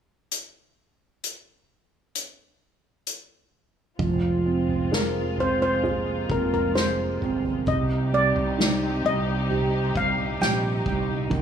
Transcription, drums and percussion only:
0.31 closed hi-hat medium
1.24 closed hi-hat soft
2.15 closed hi-hat soft
3.07 closed hi-hat soft
3.99 kick medium
3.99 floor tom loud
4.69 floor tom medium
4.93 snare medium
5.38 floor tom medium
5.84 floor tom medium
6.30 kick medium
6.52 floor tom medium
6.76 snare medium
7.22 floor tom medium
7.44 floor tom medium
7.67 kick loud
7.67 floor tom loud
8.36 floor tom medium
8.60 snare loud
9.05 floor tom medium
9.50 floor tom medium
9.96 kick medium
10.18 floor tom medium
10.42 snare medium
10.86 kick medium
10.86 floor tom medium
11.09 floor tom medium
11.31 kick loud
11.31 floor tom loud

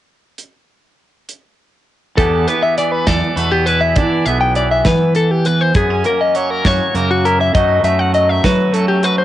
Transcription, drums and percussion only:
0.38 closed hi-hat medium
1.29 closed hi-hat medium
2.18 kick loud
2.18 closed hi-hat medium
2.47 closed hi-hat medium
2.77 closed hi-hat medium
3.07 kick medium
3.07 snare loud
3.07 closed hi-hat medium
3.37 closed hi-hat medium
3.67 closed hi-hat medium
3.96 kick loud
3.96 closed hi-hat medium
4.26 closed hi-hat medium
4.55 closed hi-hat medium
4.85 kick medium
4.85 snare loud
4.85 closed hi-hat medium
5.15 closed hi-hat medium
5.45 closed hi-hat medium
5.75 kick medium
5.75 closed hi-hat medium
6.04 closed hi-hat soft
6.35 closed hi-hat medium
6.65 kick medium
6.65 snare loud
6.65 closed hi-hat medium
6.95 closed hi-hat medium
7.25 closed hi-hat medium
7.54 kick medium
7.54 closed hi-hat medium
7.84 closed hi-hat medium
8.14 closed hi-hat medium
8.44 kick medium
8.44 snare loud
8.44 closed hi-hat medium
8.74 closed hi-hat medium
9.03 closed hi-hat medium

